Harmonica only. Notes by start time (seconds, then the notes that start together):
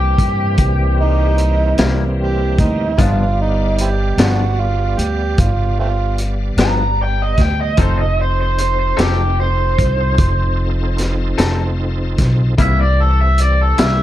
1.01 D#4
2.20 G4
2.59 D#4
3.01 F4
3.41 D#4
3.81 C4 E4 G4
4.20 F#4
4.60 F4
4.99 G4
5.40 F4
5.80 A3 C4 F4